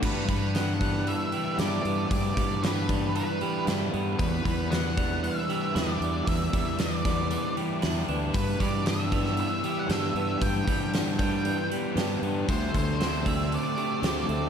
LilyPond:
<<
  \new Staff \with { instrumentName = "Lead electric guitar" } { \time 4/4 \key g \major \tempo 4 = 116 b'8 b'8 fis''4 e''4 d''4 | d''4 b'4 b'4 r4 | b'8 b'8 fis''4 e''4 d''4 | e''4 d''4. r4. |
b'8 d''8 e''4 e''8. fis''16 e''4 | g''4 r8 g''4 r4. | c''8 c''4 e''8 d''2 | }
  \new Staff \with { instrumentName = "Clean electric guitar" } { \time 4/4 \key g \major e4 e8 d'8 b8 g'8 d'8 b8 | e4 e8 d'8 b8 g'8 d'8 b8 | e4 e8 d'8 b8 g'8 d'8 b8 | e4 e8 d'8 b8 g'8 d'8 b8 |
e4 e8 d'8 b8 g'8 d'8 b8 | e4 e8 d'8 b8 g'8 d'8 b8 | a4 a8 c'8 a8 g'8 c'8 a8 | }
  \new Staff \with { instrumentName = "Distorted electric guitar" } { \clef bass \time 4/4 \key g \major g,4 e8 b8 g8 e8 b8 g8 | g,4 e8 b8 g8 e8 b8 g8 | e,4 e8 d'8 g8 e8 d'8 g8 | e,4 e8 d'8 g8 e8 d'8 g8 |
g,4 e8 b8 g8 e8 b8 g8 | g,4 e8 b8 g8 e8 b8 g8 | d4 d8 c'8 a8 d8 c'8 a8 | }
  \new Staff \with { instrumentName = "Overdriven electric guitar" } { \clef bass \time 4/4 \key g \major g,8 g8 b8 g8 e8 g8 e'8 b8 | g,8 g8 b8 g8 e8 g8 e'8 b8 | e,8 g8 d'8 g8 e8 g8 e'8 d'8 | e,8 g8 d'8 g8 e8 g8 e'8 d'8 |
g,8 g8 b8 g8 e8 g8 g'8 b8 | g,8 g8 b8 g8 e8 g8 g'8 b8 | d8 a8 c'8 a8 d8 a8 g'8 c'8 | }
  \new Staff \with { instrumentName = "Fingered electric bass" } { \clef bass \time 4/4 \key g \major g,8 g,2 r8 g,8 g,8 | g,8 g,2 r8 g,8 g,8 | e,8 e,2 r8 e,8 e,8 | e,8 e,2 r8 e,8 d,8 |
g,8 g,2 r8 g,8 g,8 | g,8 g,2 r8 g,8 g,8 | d,8 d,2 r8 d,8 d,8 | }
  \new DrumStaff \with { instrumentName = "Drums" } \drummode { \time 4/4 <cymc bd>8 <hho bd>8 <hho sn>8 <hho bd>8 hho8 hho8 <hho sn>8 hho8 | <hho bd>8 <hho bd>8 <hho sn>8 <hho bd>8 hho8 hho8 <hho sn>8 hho8 | <hho bd>8 <hho bd>8 <hho sn>8 <hho bd>8 hho8 hho8 <hho sn>8 hho8 | <hho bd>8 <hho bd>8 <hho sn>8 <hho bd>8 hho8 hho8 <hho sn>8 hho8 |
<hho bd>8 <hho bd>8 <hho sn>8 <hho bd>16 sn16 hho8 hho8 <hho sn>8 hho8 | <hho bd>8 <hho bd>8 <hho sn>8 <hho bd>8 hho8 hho8 <hho sn>8 hho8 | <hho bd>8 <hho bd>8 <hho sn>8 <hho bd>8 hho8 hho8 <hho sn>8 hho8 | }
>>